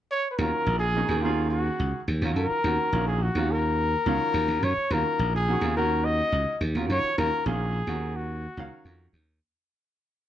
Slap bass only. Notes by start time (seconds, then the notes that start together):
0.38 D#2
0.66 A#1
1.09 D#2
1.79 C#2
2.08 D#2
2.21 D#2
2.36 F#2
2.51 muted slap bass stroke
2.64 D#2
2.92 A#1
3.35 D#2
4.06 C#2
4.34 D#2
4.48 D#2
4.62 F#2
4.77 muted slap bass stroke
4.90 D#2
5.19 A#1
5.61 D#2
6.32 C#2
6.61 D#2
6.75 D#2
6.89 F#2
7.04 muted slap bass stroke
7.18 D#2
7.46 A#1
7.87 D#2
8.57 C#2
8.85 F2
9.13 D#2